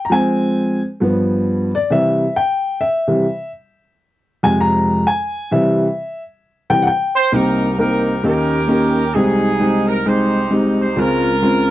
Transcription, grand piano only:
0.05 0.11 A#5 medium
0.10 0.79 F3 medium
0.10 0.79 G#3 medium
0.10 0.80 C4 medium
0.10 0.80 G#5 loud
1.00 1.69 G2 medium
1.00 1.70 F3 medium
1.00 1.70 B3 medium
1.75 1.92 D5 medium
1.90 2.23 C3 medium
1.90 2.24 E3 soft
1.90 2.24 G3 medium
1.90 2.38 E5 loud
2.36 2.83 G5 loud
2.81 3.50 E5 medium
3.08 3.24 C3 soft
3.08 3.24 E3 soft
3.08 3.25 G3 medium
4.43 5.03 F2 medium
4.43 5.04 C3 medium
4.43 5.04 G#3 medium
4.43 4.62 G#5 medium
4.61 5.08 A#5 loud
5.07 5.49 G#5 loud
5.51 5.85 C3 medium
5.51 5.85 E3 medium
5.51 5.85 G3 medium
5.51 6.21 E5 medium
6.70 6.86 C3 soft
6.70 6.86 E3 soft
6.70 6.86 G3 medium
6.70 6.83 G5 loud
6.82 6.88 F#5 medium
6.87 7.30 G5 loud
7.32 8.19 C2 medium
7.32 8.20 C3 medium
7.32 7.65 A#3 medium
7.32 7.65 C4 medium
7.32 7.65 D#4 medium
7.32 7.65 G4 medium
7.78 8.11 A#3 medium
7.78 8.11 C4 medium
7.78 8.11 D#4 medium
7.78 8.11 A#4 medium
8.23 9.11 D#2 medium
8.23 9.11 D#3 medium
8.23 8.56 A#3 medium
8.23 8.56 C#4 medium
8.23 8.56 D#4 medium
8.23 8.56 G4 medium
8.68 9.01 A#3 medium
8.68 9.01 C#4 medium
8.68 9.01 D#4 medium
8.68 9.01 G4 medium
9.14 10.93 C2 medium
9.14 10.93 C3 medium
9.14 9.47 G#3 medium
9.14 9.47 C4 medium
9.14 9.47 D#4 medium
9.14 9.47 G4 medium
9.60 9.92 G#3 medium
9.60 9.92 C4 medium
9.60 9.92 D#4 medium
9.60 9.92 G4 medium
10.05 10.38 G#3 medium
10.05 10.38 C4 medium
10.05 10.38 D#4 medium
10.05 10.38 G#4 medium
10.50 10.83 G#3 medium
10.50 10.83 C4 medium
10.50 10.83 D#4 medium
10.50 10.83 G4 medium
10.96 11.71 C#2 medium
10.96 11.71 C#3 medium
10.96 11.29 G#3 medium
10.96 11.29 C4 medium
10.96 11.29 C#4 medium
10.96 11.29 F4 medium
11.42 11.71 G#3 medium
11.42 11.71 C4 medium
11.42 11.71 C#4 medium
11.42 11.71 F4 medium

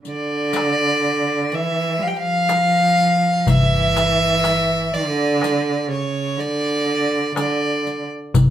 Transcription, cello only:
0.05 1.54 D3 medium
1.52 1.97 E3 medium
1.98 2.13 F3 medium
1.98 2.02 G3 medium
2.14 3.39 F3 loud
3.39 3.48 F3 medium
3.46 4.93 E3 medium
4.92 5.89 D3 medium
5.87 6.37 C#3 medium
6.36 7.34 D3 medium
7.35 8.05 D3 medium

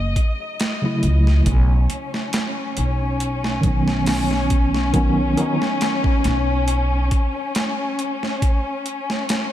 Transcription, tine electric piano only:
0.82 1.44 C#3 medium
0.82 1.44 F#3 medium
0.82 1.45 A3 medium
0.82 1.46 E4 medium
3.61 4.88 D#3 medium
3.61 4.89 F#3 medium
3.66 4.91 B3 medium
3.66 4.92 C#4 medium
4.93 5.33 D#3 loud
4.93 5.33 F#3 medium
4.93 5.34 B3 medium
4.93 5.34 C#4 loud
5.37 5.55 D#3 loud
5.37 5.55 F#3 medium
5.37 5.56 B3 medium
5.37 5.56 D#4 loud

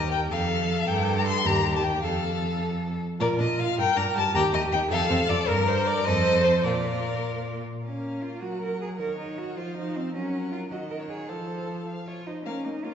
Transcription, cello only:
0.00 0.30 D#2 loud
0.30 0.87 F2 medium
0.88 1.46 G2 loud
1.45 2.02 D#2 medium
2.03 2.98 F2 medium
3.20 3.28 A#2 medium
3.40 3.47 A#2 medium
3.59 3.67 A#2 medium
3.78 3.86 G2 medium
3.97 4.05 G2 medium
4.17 4.25 G2 medium
4.34 4.42 D#2 loud
4.54 4.62 D#2 medium
4.72 4.80 D#2 medium
4.91 4.98 F2 loud
5.10 5.18 F2 medium
5.29 5.37 F2 loud
5.48 6.08 G2 loud
6.07 6.64 F2 medium
6.65 7.61 A#2 medium
7.84 8.23 C#4 medium
8.22 8.44 F4 medium
8.42 8.61 F#4 medium
8.62 8.80 A#4 medium
8.82 8.89 G#4 medium
8.99 9.18 A#4 medium
9.18 9.40 D#4 medium
9.38 9.57 F#4 medium
9.57 9.76 F4 medium
9.76 9.97 D#4 medium
9.96 10.14 C4 medium
10.14 10.52 C#4 medium
10.52 10.60 F4 medium
10.72 10.79 F#4 medium
10.90 10.98 A#4 medium
11.10 11.31 G#4 medium
11.29 11.87 A4 medium
12.07 12.28 F4 medium
12.27 12.44 D#4 medium
12.44 12.66 C#4 medium
12.65 12.86 D#4 medium
12.85 12.94 F4 medium

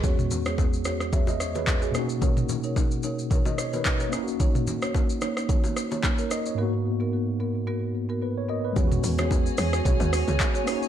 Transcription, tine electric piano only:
0.00 1.89 E2 medium
0.00 1.90 G#3 medium
0.00 0.18 G#4 medium
0.04 1.91 B3 medium
0.04 1.92 C#4 medium
0.04 1.93 F#4 medium
1.13 1.27 E5 medium
1.28 1.40 D#5 medium
1.40 1.54 C#5 medium
1.55 1.81 B4 medium
1.83 2.09 G#4 medium
1.91 4.07 B2 medium
1.91 4.08 A#3 medium
1.91 4.09 C#4 medium
1.97 4.10 D#4 medium
1.97 4.11 F#4 medium
3.46 3.58 D#5 medium
3.59 3.73 C#5 medium
3.73 3.99 B4 medium
4.01 4.27 A#4 medium
4.09 6.25 A#3 medium
4.09 6.27 C#4 medium
4.14 6.28 D#4 medium
4.14 4.22 E4 medium
4.24 6.32 F#4 medium
6.19 6.31 A#4 medium
6.32 6.46 D#5 medium
6.47 6.72 C#5 medium
6.55 8.71 G#2 medium
6.55 8.72 A#3 medium
6.55 8.73 B3 medium
6.61 8.74 D#4 medium
6.61 8.75 F#4 medium
8.23 8.36 B4 medium
8.37 8.49 C#5 medium
8.50 8.64 D#5 medium
8.65 8.90 B4 medium
8.73 10.62 G#3 medium
8.73 10.63 B3 medium
8.78 10.64 C#4 medium
8.78 8.86 F4 medium
8.87 10.69 F#4 medium
10.64 10.88 A#3 medium
10.64 10.88 C#4 medium
10.69 10.88 D#4 medium
10.69 10.88 F#4 medium

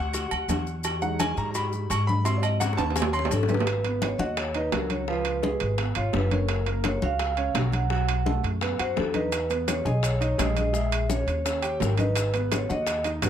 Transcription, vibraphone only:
3.14 3.32 C#5 medium
3.31 3.49 A4 medium
3.49 4.04 B4 loud
4.03 4.21 C#5 medium
4.18 4.37 D#5 medium
4.37 4.55 C#5 medium
4.56 4.72 B4 medium
4.73 4.89 A#4 medium
4.91 5.07 C#5 medium
5.09 5.75 B4 medium
5.97 6.13 C#5 medium
6.15 6.33 B4 medium
6.33 6.82 A#4 medium
6.85 7.03 C#5 medium
7.04 7.52 F5 loud
7.74 8.40 F#5 loud
8.80 8.98 C5 medium
8.96 9.15 A4 medium
9.14 9.47 B4 medium
9.68 9.86 C#5 medium
9.86 10.04 D#5 loud
10.04 10.20 C#5 medium
10.21 10.37 C#5 loud
10.57 10.75 D#5 loud
10.75 11.08 E5 loud
11.11 11.62 C#5 medium
11.63 11.80 C#5 medium
11.81 11.99 A#4 medium
12.00 12.32 B4 medium
12.53 12.71 C#5 medium
12.71 13.03 D#5 loud
13.24 13.29 B4 medium

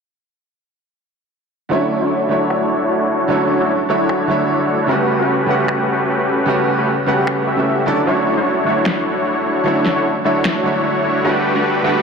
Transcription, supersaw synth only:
1.71 1.99 A3 medium
1.71 1.99 D4 medium
1.71 1.99 E4 medium
1.71 1.99 F#4 medium
1.71 1.99 C#5 loud
2.01 2.28 A3 medium
2.01 2.28 D4 medium
2.01 2.28 E4 medium
2.01 2.28 F#4 medium
2.01 2.28 C#5 medium
2.31 3.28 A3 medium
2.31 3.28 D4 medium
2.31 3.28 E4 medium
2.31 3.28 F#4 medium
2.31 3.28 C#5 medium
3.30 3.58 A3 medium
3.30 3.58 D4 medium
3.30 3.58 E4 medium
3.30 3.58 F#4 medium
3.30 3.58 C#5 loud
3.60 3.71 A3 medium
3.60 3.71 D4 medium
3.60 3.72 E4 medium
3.60 3.71 F#4 medium
3.60 3.72 C#5 loud
3.90 4.87 A3 medium
3.90 4.87 D4 medium
3.90 4.87 E4 medium
3.90 4.87 F#4 medium
3.90 4.87 C#5 loud
4.89 5.17 A3 medium
4.89 5.17 C#4 medium
4.89 5.17 F#4 medium
4.89 5.17 G4 medium
4.89 5.17 B4 loud
5.19 5.46 A3 medium
5.19 5.46 C#4 medium
5.19 5.46 F#4 medium
5.19 5.46 G4 medium
5.19 5.46 B4 medium
5.48 6.46 A3 medium
5.48 6.46 C#4 medium
5.48 6.46 F#4 medium
5.48 6.46 G4 medium
5.48 6.46 B4 medium
6.48 6.76 A3 medium
6.48 6.76 C#4 medium
6.48 6.76 F#4 medium
6.48 6.76 G4 medium
6.48 6.76 B4 loud
6.78 6.89 A3 medium
6.78 6.89 C#4 medium
6.78 6.89 F#4 medium
6.78 6.89 G4 medium
6.78 6.89 B4 loud
7.07 7.45 A3 medium
7.07 7.45 C#4 medium
7.07 7.45 F#4 medium
7.07 7.45 G4 medium
7.07 7.45 B4 loud
7.47 7.85 A3 medium
7.47 7.85 C#4 medium
7.47 7.85 F#4 medium
7.47 7.85 G4 medium
7.47 7.85 E5 medium
7.87 8.05 A3 medium
7.87 8.05 D4 medium
7.87 8.04 E4 medium
7.87 8.04 F#4 medium
7.87 8.05 D5 medium
8.07 8.35 A3 medium
8.07 8.35 D4 medium
8.07 8.35 E4 medium
8.07 8.35 F#4 medium
8.07 8.35 C#5 loud
8.37 8.64 A3 medium
8.37 8.64 D4 medium
8.37 8.64 E4 medium
8.37 8.64 F#4 medium
8.37 8.64 C#5 medium
8.66 9.63 A3 medium
8.66 9.63 D4 medium
8.66 9.63 E4 medium
8.66 9.63 F#4 medium
8.66 9.63 C#5 medium
9.66 9.94 A3 medium
9.66 9.94 D4 medium
9.66 9.94 E4 medium
9.66 9.94 F#4 medium
9.66 9.94 C#5 loud
9.96 10.07 A3 medium
9.96 10.07 D4 medium
9.96 10.07 E4 medium
9.96 10.07 F#4 medium
9.96 10.07 C#5 loud
10.25 11.22 A3 medium
10.25 11.22 D4 medium
10.25 11.22 E4 medium
10.25 11.22 F#4 medium
10.25 11.22 C#5 loud
11.25 11.53 A3 medium
11.25 11.52 D4 medium
11.25 11.52 F#4 medium
11.25 11.52 G4 medium
11.25 11.53 B4 loud
11.55 11.82 A3 medium
11.55 11.82 D4 medium
11.55 11.82 F#4 medium
11.55 11.82 G4 medium
11.55 11.82 B4 medium
11.84 12.02 A3 medium
11.84 12.02 D4 medium
11.84 12.02 F#4 medium
11.84 12.02 G4 medium
11.84 12.02 B4 medium

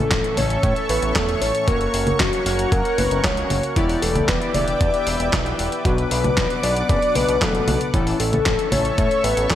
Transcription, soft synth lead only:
0.00 0.39 A4 loud
0.37 0.63 C#5 loud
0.63 0.75 C#5 loud
0.89 1.17 B4 loud
1.16 1.43 A4 loud
1.41 1.69 C#5 loud
1.68 2.21 A#4 loud
2.20 2.45 F#4 loud
2.46 2.74 F#4 medium
2.72 3.00 A#4 loud
2.98 3.26 B4 loud
3.24 3.63 C#5 loud
3.76 4.01 E4 loud
4.02 4.30 A4 loud
4.28 4.56 B4 loud
4.54 5.33 D5 loud
5.85 5.97 F#4 loud
6.11 6.65 B4 loud
6.63 6.89 D5 loud
6.89 7.17 D5 loud
7.15 7.43 B4 loud
7.42 7.81 A4 loud
7.94 8.18 E4 loud
8.20 8.73 A4 loud
8.72 8.97 C#5 loud
8.98 9.25 C#5 loud
9.24 9.52 B4 loud
9.50 9.55 A4 loud

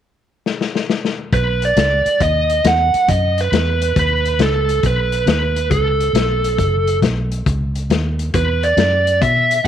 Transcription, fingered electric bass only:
1.32 1.75 B1 medium
1.77 2.04 C#2 medium
2.06 muted fingered electric bass stroke soft
2.20 2.63 D#2 medium
2.65 2.92 E2 medium
2.94 muted fingered electric bass stroke soft
3.08 3.51 F#2 medium
3.52 3.95 E2 medium
3.96 4.38 D#2 medium
4.39 4.82 C#2 medium
4.83 5.26 B1 medium
5.26 5.69 D#2 medium
5.71 6.13 C#2 medium
6.13 6.56 B1 medium
6.58 7.01 F#1 medium
7.02 7.44 B1 medium
7.46 7.89 C#2 medium
7.90 8.32 D#2 medium
8.34 8.76 E2 medium
8.77 9.20 F#2 medium
9.21 9.64 B2 medium
9.64 9.68 A2 medium

